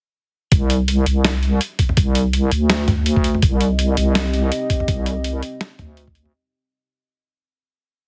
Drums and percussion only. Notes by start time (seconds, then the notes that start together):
0.52 kick, closed hi-hat
0.70 closed hi-hat
0.88 closed hi-hat
1.06 closed hi-hat
1.25 snare, closed hi-hat
1.43 closed hi-hat
1.61 closed hi-hat
1.79 kick, closed hi-hat
1.89 mid tom
1.97 kick, closed hi-hat
2.15 closed hi-hat
2.33 closed hi-hat
2.51 closed hi-hat
2.70 snare, closed hi-hat
2.88 closed hi-hat, mid tom
3.06 closed hi-hat
3.16 kick, mid tom
3.24 closed hi-hat
3.35 mid tom
3.42 kick, closed hi-hat
3.61 closed hi-hat
3.79 closed hi-hat
3.97 closed hi-hat
4.15 snare, closed hi-hat
4.34 closed hi-hat
4.52 closed hi-hat
4.70 kick, closed hi-hat
4.80 mid tom
4.88 kick, closed hi-hat
5.06 closed hi-hat
5.24 closed hi-hat
5.43 closed hi-hat
5.61 snare, closed hi-hat
5.79 closed hi-hat, mid tom
5.97 closed hi-hat
6.07 kick, mid tom
6.15 closed hi-hat
6.25 mid tom